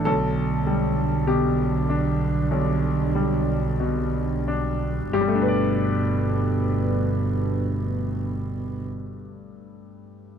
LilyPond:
<<
  \new Staff \with { instrumentName = "Ambient pad" } { \time 4/4 \key g \major \tempo 4 = 46 <g d' d''>1 | <a d' b'>1 | }
  \new Staff \with { instrumentName = "Grand piano" } { \time 4/4 \key g \major a'4 g'2 r4 | <g, g a d' g' b' d''>1 | }
  \new Staff \with { instrumentName = "Grand piano" } { \clef bass \time 4/4 \key g \major b,,8 g8 b,8 d'8 b,,8 g8 b,8 d'8 | r1 | }
  \new Staff \with { instrumentName = "Cello" } { \clef bass \time 4/4 \key g \major d1 | b,1 | }
  \new Staff \with { instrumentName = "Double bass" } { \clef bass \time 4/4 \key g \major b,,1 | g,,1 | }
>>